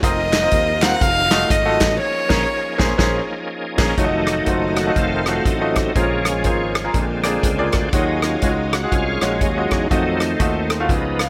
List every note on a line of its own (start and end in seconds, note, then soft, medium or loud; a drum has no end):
0.00 0.45 F1 medium
0.00 1.97 D#3 medium
0.00 1.01 F3 medium
0.00 0.97 A#3 medium
0.00 0.34 C4 medium
0.00 3.94 D#4 medium
0.00 1.98 F4 medium
0.00 0.34 F4 medium
0.00 0.34 A#4 medium
0.00 0.35 D#5 medium
0.00 kick loud
0.00 closed hi-hat loud
0.04 0.84 D#5 loud
0.33 snare loud
0.33 clap medium
0.33 closed hi-hat medium
0.42 0.69 C4 medium
0.42 0.69 F4 medium
0.42 0.69 A#4 medium
0.42 0.69 D#5 medium
0.51 0.94 D#2 medium
0.51 kick medium
0.51 closed hi-hat medium
0.82 1.01 C4 medium
0.82 1.02 F4 medium
0.82 1.02 A#4 medium
0.82 1.02 F5 medium
0.82 1.03 F#5 loud
0.82 snare loud
0.82 clap medium
0.82 closed hi-hat medium
1.01 1.43 F1 loud
1.01 1.99 F#3 medium
1.01 1.99 A3 medium
1.01 1.52 F5 loud
1.01 kick loud
1.01 closed hi-hat medium
1.31 1.53 A3 medium
1.31 1.53 F4 medium
1.31 1.53 F#4 medium
1.31 1.53 D#5 medium
1.31 snare loud
1.31 clap loud
1.31 closed hi-hat medium
1.50 1.76 G#1 medium
1.50 1.99 D#5 medium
1.50 kick loud
1.50 closed hi-hat loud
1.65 1.92 A3 medium
1.65 1.92 F4 medium
1.65 1.92 F#4 medium
1.65 1.92 A4 medium
1.80 1.97 A1 loud
1.80 kick medium
1.80 snare loud
1.80 clap medium
1.80 closed hi-hat medium
1.99 3.95 F3 medium
1.99 3.95 A#3 medium
1.99 3.95 C#4 medium
1.99 3.95 G#4 medium
1.99 2.95 C#5 loud
2.29 2.44 A#1 medium
2.29 2.43 A#3 medium
2.29 2.43 C#4 medium
2.29 2.43 G#4 medium
2.29 2.43 A#4 medium
2.29 kick loud
2.29 snare loud
2.29 crash medium
2.78 2.93 A#1 loud
2.78 2.92 A#3 medium
2.78 2.92 C#4 medium
2.78 2.92 G#4 medium
2.78 2.92 C5 medium
2.78 kick loud
2.78 snare loud
2.98 3.19 A#1 medium
2.98 3.19 A#3 medium
2.98 3.19 C#4 medium
2.98 3.19 G#4 medium
2.98 3.19 C5 medium
2.98 kick loud
2.98 snare loud
3.78 3.92 A#1 loud
3.78 3.91 A#3 medium
3.78 3.92 C#4 medium
3.78 3.92 G#4 medium
3.78 3.92 A#4 medium
3.78 kick loud
3.78 snare loud
3.78 crash medium
3.97 4.40 F1 medium
3.97 5.26 D#3 soft
3.97 5.94 F#3 medium
3.97 4.93 F#3 medium
3.97 4.36 A3 medium
3.97 4.93 A3 medium
3.97 4.80 D#4 medium
3.97 4.36 F4 medium
3.97 4.37 F#4 medium
3.97 5.93 A4 medium
3.97 4.06 C#5 medium
3.97 5.93 D#5 medium
3.97 5.93 F5 medium
3.97 kick medium
3.97 closed hi-hat medium
4.04 4.39 D#5 medium
4.27 cross-stick medium
4.27 closed hi-hat medium
4.46 4.89 F#1 medium
4.46 4.79 A3 medium
4.46 4.79 F4 medium
4.46 4.79 F#4 medium
4.46 4.79 C5 medium
4.46 kick medium
4.46 closed hi-hat medium
4.76 4.95 F#4 medium
4.76 cross-stick loud
4.76 closed hi-hat medium
4.87 5.14 A3 medium
4.87 5.14 F4 medium
4.87 5.14 F#4 medium
4.87 5.14 D#5 medium
4.96 5.39 F1 medium
4.96 5.27 A3 medium
4.96 5.92 C4 medium
4.96 5.47 F4 loud
4.96 kick medium
4.96 closed hi-hat medium
5.26 5.45 D#3 soft
5.26 5.45 F#3 soft
5.26 5.49 A3 medium
5.26 5.45 A3 soft
5.26 5.49 F4 medium
5.26 5.49 F#4 medium
5.26 5.49 A4 medium
5.26 cross-stick medium
5.26 closed hi-hat medium
5.45 5.88 A1 medium
5.45 5.93 F#3 medium
5.45 5.93 A3 medium
5.45 5.97 D#4 medium
5.45 kick loud
5.45 closed hi-hat medium
5.61 5.87 A3 medium
5.61 5.87 F4 medium
5.61 5.88 F#4 medium
5.61 5.88 D#5 medium
5.75 kick medium
5.75 cross-stick medium
5.75 closed hi-hat medium
5.95 6.45 A#1 medium
5.95 6.71 A#2 medium
5.95 6.32 C#3 medium
5.95 6.91 F3 medium
5.95 6.92 G#3 soft
5.95 6.34 A#3 medium
5.95 6.33 A#3 medium
5.95 6.90 C#4 medium
5.95 6.34 F4 medium
5.95 9.87 G#4 medium
5.95 6.34 G#4 medium
5.95 7.91 A#4 medium
5.95 6.03 C5 medium
5.95 6.94 C#5 medium
5.95 11.29 F5 medium
5.95 kick loud
5.95 closed hi-hat medium
6.03 6.37 C#5 medium
6.25 cross-stick medium
6.25 closed hi-hat medium
6.44 6.87 G#1 medium
6.44 6.77 A#3 medium
6.44 6.77 F4 medium
6.44 6.77 G#4 medium
6.44 6.77 C5 medium
6.44 kick medium
6.44 closed hi-hat medium
6.75 cross-stick loud
6.75 closed hi-hat medium
6.84 6.94 A#3 medium
6.84 6.94 F4 medium
6.84 6.94 G#4 medium
6.84 6.95 A#4 medium
6.94 7.36 A#1 medium
6.94 7.70 A#2 medium
6.94 7.89 D3 medium
6.94 7.89 G#3 medium
6.94 7.89 C4 medium
6.94 7.92 D5 medium
6.94 kick medium
6.94 closed hi-hat medium
7.24 7.46 A#3 medium
7.24 7.46 F4 medium
7.24 7.46 G#4 medium
7.24 7.46 D5 medium
7.24 cross-stick loud
7.24 closed hi-hat medium
7.43 7.69 C#2 medium
7.43 kick medium
7.43 closed hi-hat medium
7.58 7.85 A#3 medium
7.58 7.85 F4 medium
7.58 7.85 G#4 medium
7.58 7.85 D5 medium
7.72 7.91 D2 medium
7.72 kick medium
7.72 cross-stick loud
7.72 closed hi-hat medium
7.89 7.94 D4 medium
7.89 closed hi-hat medium
7.93 8.35 D#2 medium
7.93 8.69 D#3 medium
7.93 8.23 F#3 medium
7.93 8.32 G#3 medium
7.93 8.23 G#3 medium
7.93 10.87 D#4 medium
7.93 8.76 D#4 medium
7.93 8.32 F4 medium
7.93 8.32 F#4 medium
7.93 9.89 C#5 medium
7.93 8.32 C#5 medium
7.93 kick loud
8.22 8.54 F#3 medium
8.22 8.54 G#3 soft
8.22 8.54 C#4 medium
8.22 8.54 F4 medium
8.22 cross-stick medium
8.22 closed hi-hat medium
8.42 8.85 C#2 medium
8.42 8.74 G#3 medium
8.42 8.74 F4 medium
8.42 8.74 F#4 medium
8.42 8.75 C#5 medium
8.42 kick medium
8.42 closed hi-hat medium
8.73 8.93 F#4 loud
8.73 cross-stick loud
8.73 closed hi-hat medium
8.83 9.09 G#3 medium
8.83 9.10 F4 medium
8.83 9.10 F#4 medium
8.83 9.10 G#4 medium
8.92 9.18 C2 medium
8.92 9.41 G#3 medium
8.92 9.87 C#4 medium
8.92 9.38 F4 medium
8.92 kick medium
8.92 closed hi-hat medium
9.21 9.39 A#1 medium
9.21 9.43 G#3 medium
9.21 9.43 F4 medium
9.21 9.44 F#4 medium
9.21 9.44 C#5 medium
9.21 cross-stick loud
9.21 closed hi-hat medium
9.41 9.67 D#2 medium
9.41 9.88 F#3 soft
9.41 9.88 G#3 medium
9.41 9.88 D#4 medium
9.41 kick medium
9.41 closed hi-hat medium
9.57 9.83 G#3 medium
9.57 9.83 F4 medium
9.57 9.83 F#4 medium
9.57 9.83 D#5 medium
9.71 9.88 E2 medium
9.71 kick medium
9.71 cross-stick loud
9.71 closed hi-hat medium
9.90 10.33 F2 medium
9.90 10.86 D#3 soft
9.90 10.27 F#3 soft
9.90 10.29 A3 medium
9.90 10.86 A3 soft
9.90 10.86 C4 medium
9.90 10.27 D#4 medium
9.90 10.29 F4 medium
9.90 10.29 F#4 medium
9.90 10.89 A4 medium
9.90 10.88 D#5 medium
9.90 10.29 D#5 medium
9.90 kick loud
9.90 closed hi-hat medium
10.20 cross-stick medium
10.20 closed hi-hat medium
10.39 10.89 D#2 medium
10.39 10.71 A3 medium
10.39 10.71 F4 medium
10.39 10.71 F#4 medium
10.39 10.72 D#5 medium
10.39 kick medium
10.39 closed hi-hat medium
10.70 cross-stick loud
10.70 closed hi-hat medium
10.80 10.89 A3 medium
10.80 10.90 F4 medium
10.80 10.90 F#4 medium
10.80 10.90 F5 medium
10.89 11.29 C#2 medium
10.89 11.29 C#3 medium
10.89 11.25 F3 medium
10.89 11.25 B3 soft
10.89 11.25 D#4 medium
10.89 11.29 G#4 medium
10.89 11.29 B4 medium
10.89 11.29 C#5 medium
10.89 kick loud
10.89 closed hi-hat medium
11.19 11.29 F5 medium
11.19 cross-stick loud
11.19 closed hi-hat medium